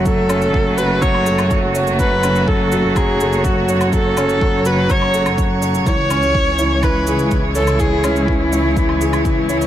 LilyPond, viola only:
\new Staff \with { instrumentName = "Viola" } { \time 4/4 \key fis \minor \tempo 4 = 124 a'4. b'8 cis''4 r4 | b'4 a'4 gis'4 fis'4 | a'4. b'8 cis''4 r4 | cis''2 b'4 r8 a'8 |
gis'4 r2. | }